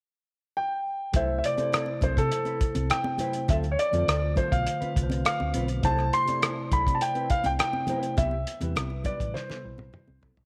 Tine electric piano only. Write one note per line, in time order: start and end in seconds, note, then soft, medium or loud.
1.13 1.43 C3 medium
1.13 1.43 A3 medium
1.13 1.44 E4 medium
1.13 1.45 C5 medium
1.57 2.35 C3 medium
1.57 2.36 A3 soft
1.57 2.36 E4 medium
1.57 2.37 C5 medium
3.17 3.48 C3 medium
3.17 3.48 A3 medium
3.17 3.49 E4 medium
3.17 3.49 C5 medium
3.91 4.21 D3 medium
3.91 4.22 A3 soft
3.91 4.23 F4 medium
3.91 4.23 C5 medium
4.35 4.75 D3 medium
4.35 4.75 A3 medium
4.35 4.76 F4 medium
4.39 4.77 C5 medium
4.93 5.53 D3 medium
4.93 5.53 A3 medium
4.93 5.54 F4 medium
4.93 5.03 B4 medium
5.03 5.58 C5 medium
5.81 6.11 C3 medium
5.81 6.12 A3 medium
5.81 6.13 E4 medium
5.81 6.13 C5 medium
6.25 7.04 C3 medium
6.25 7.05 A3 medium
6.25 7.05 E4 medium
6.25 7.06 D5 medium
7.86 8.17 C3 medium
7.86 8.17 A3 medium
7.86 8.18 E4 medium
7.86 8.18 C5 medium
8.60 8.90 C3 medium
8.60 8.91 G3 medium
8.60 8.91 E4 medium
8.64 8.92 B4 medium
9.03 9.43 C3 medium
9.03 9.44 G3 soft
9.03 9.45 E4 medium
9.07 9.45 B4 medium
9.62 10.21 C3 medium
9.62 10.22 G3 medium
9.62 10.22 E4 medium
9.66 10.23 C5 medium